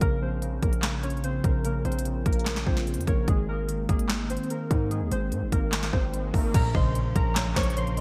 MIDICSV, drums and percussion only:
0, 0, Header, 1, 2, 480
1, 0, Start_track
1, 0, Key_signature, -5, "minor"
1, 0, Tempo, 408163
1, 15, Time_signature, 4, 2, 24, 8
1, 9417, End_track
2, 0, Start_track
2, 0, Title_t, "Drums"
2, 15, Note_on_c, 9, 36, 124
2, 15, Note_on_c, 9, 42, 81
2, 133, Note_off_c, 9, 36, 0
2, 133, Note_off_c, 9, 42, 0
2, 495, Note_on_c, 9, 42, 83
2, 613, Note_off_c, 9, 42, 0
2, 735, Note_on_c, 9, 36, 94
2, 735, Note_on_c, 9, 42, 67
2, 853, Note_off_c, 9, 36, 0
2, 853, Note_off_c, 9, 42, 0
2, 855, Note_on_c, 9, 42, 69
2, 972, Note_on_c, 9, 39, 98
2, 973, Note_off_c, 9, 42, 0
2, 975, Note_on_c, 9, 42, 84
2, 976, Note_on_c, 9, 38, 122
2, 1089, Note_off_c, 9, 39, 0
2, 1093, Note_off_c, 9, 42, 0
2, 1094, Note_off_c, 9, 38, 0
2, 1215, Note_on_c, 9, 42, 76
2, 1295, Note_off_c, 9, 42, 0
2, 1295, Note_on_c, 9, 42, 61
2, 1375, Note_off_c, 9, 42, 0
2, 1375, Note_on_c, 9, 42, 45
2, 1455, Note_off_c, 9, 42, 0
2, 1455, Note_on_c, 9, 42, 88
2, 1573, Note_off_c, 9, 42, 0
2, 1695, Note_on_c, 9, 36, 97
2, 1695, Note_on_c, 9, 42, 79
2, 1812, Note_off_c, 9, 36, 0
2, 1813, Note_off_c, 9, 42, 0
2, 1935, Note_on_c, 9, 42, 82
2, 2053, Note_off_c, 9, 42, 0
2, 2175, Note_on_c, 9, 42, 54
2, 2256, Note_off_c, 9, 42, 0
2, 2256, Note_on_c, 9, 42, 71
2, 2335, Note_off_c, 9, 42, 0
2, 2335, Note_on_c, 9, 42, 91
2, 2415, Note_off_c, 9, 42, 0
2, 2415, Note_on_c, 9, 42, 88
2, 2533, Note_off_c, 9, 42, 0
2, 2655, Note_on_c, 9, 42, 79
2, 2656, Note_on_c, 9, 36, 88
2, 2735, Note_off_c, 9, 42, 0
2, 2735, Note_on_c, 9, 42, 64
2, 2773, Note_off_c, 9, 36, 0
2, 2815, Note_off_c, 9, 42, 0
2, 2815, Note_on_c, 9, 42, 49
2, 2892, Note_on_c, 9, 39, 95
2, 2895, Note_off_c, 9, 42, 0
2, 2895, Note_on_c, 9, 42, 85
2, 2896, Note_on_c, 9, 38, 122
2, 3009, Note_off_c, 9, 39, 0
2, 3010, Note_on_c, 9, 39, 66
2, 3013, Note_off_c, 9, 42, 0
2, 3014, Note_off_c, 9, 38, 0
2, 3014, Note_on_c, 9, 38, 83
2, 3127, Note_off_c, 9, 39, 0
2, 3132, Note_off_c, 9, 38, 0
2, 3135, Note_on_c, 9, 36, 93
2, 3253, Note_off_c, 9, 36, 0
2, 3255, Note_on_c, 9, 38, 71
2, 3373, Note_off_c, 9, 38, 0
2, 3375, Note_on_c, 9, 42, 53
2, 3455, Note_off_c, 9, 42, 0
2, 3455, Note_on_c, 9, 42, 73
2, 3535, Note_off_c, 9, 42, 0
2, 3535, Note_on_c, 9, 42, 86
2, 3615, Note_off_c, 9, 42, 0
2, 3615, Note_on_c, 9, 36, 96
2, 3615, Note_on_c, 9, 42, 80
2, 3732, Note_off_c, 9, 36, 0
2, 3733, Note_off_c, 9, 42, 0
2, 3855, Note_on_c, 9, 36, 123
2, 3855, Note_on_c, 9, 42, 82
2, 3972, Note_off_c, 9, 42, 0
2, 3973, Note_off_c, 9, 36, 0
2, 4335, Note_on_c, 9, 42, 86
2, 4453, Note_off_c, 9, 42, 0
2, 4575, Note_on_c, 9, 42, 65
2, 4576, Note_on_c, 9, 36, 91
2, 4693, Note_off_c, 9, 36, 0
2, 4693, Note_off_c, 9, 42, 0
2, 4695, Note_on_c, 9, 42, 67
2, 4812, Note_on_c, 9, 39, 97
2, 4813, Note_off_c, 9, 42, 0
2, 4815, Note_on_c, 9, 42, 83
2, 4816, Note_on_c, 9, 38, 122
2, 4929, Note_off_c, 9, 39, 0
2, 4933, Note_off_c, 9, 42, 0
2, 4934, Note_off_c, 9, 38, 0
2, 5055, Note_on_c, 9, 42, 76
2, 5135, Note_off_c, 9, 42, 0
2, 5135, Note_on_c, 9, 42, 62
2, 5215, Note_off_c, 9, 42, 0
2, 5215, Note_on_c, 9, 42, 45
2, 5295, Note_off_c, 9, 42, 0
2, 5295, Note_on_c, 9, 42, 88
2, 5413, Note_off_c, 9, 42, 0
2, 5535, Note_on_c, 9, 36, 96
2, 5535, Note_on_c, 9, 42, 83
2, 5653, Note_off_c, 9, 36, 0
2, 5653, Note_off_c, 9, 42, 0
2, 5775, Note_on_c, 9, 42, 82
2, 5893, Note_off_c, 9, 42, 0
2, 6015, Note_on_c, 9, 42, 87
2, 6133, Note_off_c, 9, 42, 0
2, 6255, Note_on_c, 9, 42, 85
2, 6373, Note_off_c, 9, 42, 0
2, 6495, Note_on_c, 9, 42, 78
2, 6496, Note_on_c, 9, 36, 94
2, 6613, Note_off_c, 9, 36, 0
2, 6613, Note_off_c, 9, 42, 0
2, 6732, Note_on_c, 9, 39, 99
2, 6735, Note_on_c, 9, 42, 85
2, 6736, Note_on_c, 9, 38, 121
2, 6849, Note_off_c, 9, 39, 0
2, 6850, Note_on_c, 9, 39, 63
2, 6853, Note_off_c, 9, 42, 0
2, 6854, Note_off_c, 9, 38, 0
2, 6854, Note_on_c, 9, 38, 81
2, 6967, Note_off_c, 9, 39, 0
2, 6972, Note_off_c, 9, 38, 0
2, 6975, Note_on_c, 9, 36, 94
2, 7093, Note_off_c, 9, 36, 0
2, 7215, Note_on_c, 9, 42, 84
2, 7333, Note_off_c, 9, 42, 0
2, 7455, Note_on_c, 9, 36, 94
2, 7455, Note_on_c, 9, 46, 60
2, 7573, Note_off_c, 9, 36, 0
2, 7573, Note_off_c, 9, 46, 0
2, 7695, Note_on_c, 9, 36, 126
2, 7695, Note_on_c, 9, 42, 87
2, 7695, Note_on_c, 9, 49, 100
2, 7813, Note_off_c, 9, 36, 0
2, 7813, Note_off_c, 9, 42, 0
2, 7813, Note_off_c, 9, 49, 0
2, 7935, Note_on_c, 9, 36, 96
2, 8052, Note_off_c, 9, 36, 0
2, 8176, Note_on_c, 9, 42, 83
2, 8293, Note_off_c, 9, 42, 0
2, 8416, Note_on_c, 9, 36, 93
2, 8416, Note_on_c, 9, 42, 80
2, 8533, Note_off_c, 9, 36, 0
2, 8533, Note_off_c, 9, 42, 0
2, 8652, Note_on_c, 9, 39, 97
2, 8656, Note_on_c, 9, 42, 89
2, 8657, Note_on_c, 9, 38, 122
2, 8770, Note_off_c, 9, 39, 0
2, 8773, Note_off_c, 9, 42, 0
2, 8774, Note_off_c, 9, 38, 0
2, 8891, Note_on_c, 9, 39, 84
2, 8895, Note_on_c, 9, 36, 98
2, 8895, Note_on_c, 9, 38, 105
2, 8896, Note_on_c, 9, 42, 66
2, 8976, Note_off_c, 9, 42, 0
2, 8976, Note_on_c, 9, 42, 66
2, 9008, Note_off_c, 9, 39, 0
2, 9013, Note_off_c, 9, 36, 0
2, 9013, Note_off_c, 9, 38, 0
2, 9056, Note_off_c, 9, 42, 0
2, 9056, Note_on_c, 9, 42, 66
2, 9136, Note_off_c, 9, 42, 0
2, 9136, Note_on_c, 9, 42, 89
2, 9253, Note_off_c, 9, 42, 0
2, 9256, Note_on_c, 9, 42, 50
2, 9373, Note_off_c, 9, 42, 0
2, 9376, Note_on_c, 9, 42, 85
2, 9417, Note_off_c, 9, 42, 0
2, 9417, End_track
0, 0, End_of_file